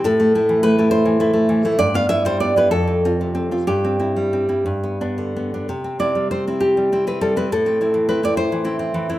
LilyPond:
\new Staff \with { instrumentName = "Nylon-string guitar" } { \time 6/8 \key c \major \tempo 4. = 66 << { a'4 b'8 c''4. | d''16 f''16 e''16 c''16 d''16 b'16 a'4. | g'4. r4. | r8 d''8 c''8 g'8. b'16 a'16 b'16 |
a'4 b'16 d''16 c''4. | } \\ { a,16 a16 <a e'>16 e16 a16 <a e'>8 e16 <a e'>16 a16 e16 <a e'>16 | g,16 b16 <b e'>16 g16 b16 <b e'>16 f,16 c'16 <c' f'>16 c16 c'16 <c' f'>16 | g,16 c'16 <c' e'>16 g16 c'16 <c' e'>16 g,16 b16 <b d'>16 d16 b16 <b d'>16 | c16 c'16 <c' e'>16 g16 c'16 <c' e'>8 g16 <c' e'>16 c'16 g16 <c' e'>16 |
a,16 c'16 <c' e'>16 e16 c'16 <c' e'>8 e16 <c' e'>16 c'16 e16 <c' e'>16 | } >> }